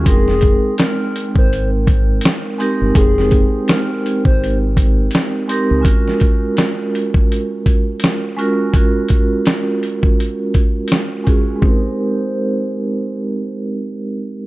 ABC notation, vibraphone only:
X:1
M:4/4
L:1/8
Q:"Swing 16ths" 1/4=83
K:Fm
V:1 name="Vibraphone"
[A,CEBg]3 z4 [A,CEGB] | [A,CEcg]3 z4 [A,CEGB] | [A,DF_GB]3 z4 [A,DFGB] | [A,DF_GB]3 z4 [A,DFGA] |
[A,CEGB]8 |]